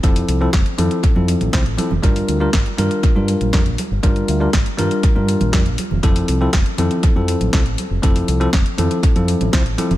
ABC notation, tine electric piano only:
X:1
M:4/4
L:1/16
Q:1/4=120
K:F
V:1 name="Tine electric piano"
[F,CEA]3 [F,CEA] z2 [F,CEA]3 [F,CEA]3 [F,CEc] z [F,CEA] z | [G,DFB]3 [G,DFB] z2 [G,DFB]3 [G,DFB]3 [G,DFB] z3 | [G,DFB]3 [G,DFB] z2 [G,DFB]3 [G,DFB]3 [G,DFB] z3 | [F,CEA]3 [F,CEA] z2 [F,CEA]3 [F,CEA]3 [F,CEA] z3 |
[F,CEA]3 [F,CEA] z2 [F,CEA]3 [F,CEA]3 [F,CEc] z [F,CEA] z |]